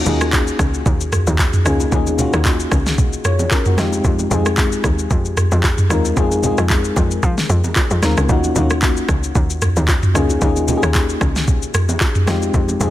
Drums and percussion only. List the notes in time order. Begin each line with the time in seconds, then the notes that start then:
0.06 low conga, shaker
0.21 cross-stick, shaker
0.33 kick, clap, high bongo, shaker
0.47 shaker
0.59 kick, cross-stick, low bongo, shaker
0.74 shaker
0.86 kick, low conga, shaker
1.01 shaker
1.12 cross-stick, mid tom, shaker
1.27 low bongo, shaker
1.39 kick, clap, high bongo, shaker
1.53 mid tom, shaker
1.66 cross-stick, shaker
1.80 high bongo, shaker
1.92 kick, low conga, shaker
2.07 low bongo, shaker
2.19 low conga, shaker
2.33 cross-stick, shaker
2.45 kick, clap, high bongo, shaker
2.60 shaker
2.72 kick, cross-stick, low bongo, shaker
2.86 snare, shaker
2.98 kick, low conga, shaker
3.13 shaker
3.25 cross-stick, mid tom, shaker
3.39 low bongo, shaker
3.51 kick, clap, high bongo, shaker
3.66 mid tom, shaker
3.78 cross-stick, snare, shaker
3.92 high bongo, shaker
4.04 kick, low conga, shaker
4.19 low bongo, shaker
4.31 low conga, shaker
4.46 cross-stick, shaker
4.57 kick, clap, high bongo, shaker
4.72 shaker
4.84 kick, cross-stick, low bongo, shaker
4.99 shaker
5.10 kick, low conga, shaker
5.25 shaker
5.37 cross-stick, mid tom, shaker
5.52 low bongo, shaker
5.63 kick, clap, high bongo, shaker
5.78 mid tom, shaker
5.90 cross-stick, shaker
6.05 high bongo, shaker
6.17 kick, low conga, shaker
6.32 low bongo, shaker
6.43 low conga, shaker
6.58 cross-stick, shaker
6.70 kick, clap, high bongo, shaker
6.84 shaker
6.96 kick, low bongo, shaker
7.11 shaker
7.23 kick, low conga, shaker
7.38 snare, shaker
7.49 mid tom, shaker
7.64 low bongo, shaker
7.76 kick, clap, high bongo, shaker
7.90 shaker
8.03 cross-stick, snare, shaker
8.17 cross-stick, high bongo, shaker
8.29 kick, low conga, shaker
8.44 low bongo, shaker
8.56 low conga, shaker
8.70 cross-stick, shaker
8.82 kick, clap, high bongo, shaker
8.97 shaker
9.09 kick, cross-stick, low bongo, shaker
9.24 shaker
9.35 kick, low conga, shaker
9.50 shaker
9.62 cross-stick, mid tom, shaker
9.77 low bongo, shaker
9.88 kick, clap, high bongo, shaker
10.03 mid tom, shaker
10.15 cross-stick, shaker
10.30 high bongo, shaker
10.42 kick, low conga, shaker
10.56 low bongo, shaker
10.68 low conga, shaker
10.83 cross-stick, shaker
10.95 kick, clap, high bongo, shaker
11.09 shaker
11.21 kick, cross-stick, low bongo, shaker
11.36 snare, shaker
11.48 kick, low conga, shaker
11.62 shaker
11.74 cross-stick, mid tom, shaker
11.89 low bongo, shaker
12.01 kick, clap, high bongo, shaker
12.15 mid tom, shaker
12.27 cross-stick, snare, shaker
12.42 high bongo, shaker
12.54 kick, low conga, shaker
12.69 low bongo, shaker
12.80 low conga, shaker